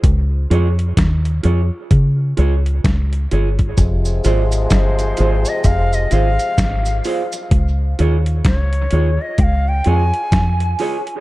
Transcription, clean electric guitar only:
X:1
M:4/4
L:1/8
Q:"Swing 16ths" 1/4=64
K:Dblyd
V:1 name="Clean electric guitar"
z [FAd] z [FAd] z [FAd] z [FAd] | z [FAc] z [FAc] z [FAc] z [FAc] | z [FAd] z [FAd] z [FAd] z [FAd] |]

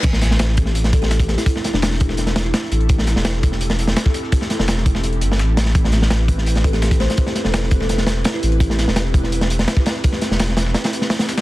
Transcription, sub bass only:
X:1
M:4/4
L:1/16
Q:1/4=168
K:Am
V:1 name="Sub bass" clef=bass
A,,,12- A,,,3 z | z3 E,,,8- E,,, z2 A,,,2- | A,,,3 E,,,8- E,,, z4 | z3 E,,,6- E,,, G,,,2 A,,,4 |
A,,,12- A,,,3 z | z3 E,,,8- E,,, z2 A,,,2- | A,,,3 E,,,8- E,,, z4 | z3 E,,,4- E,,, z8 |]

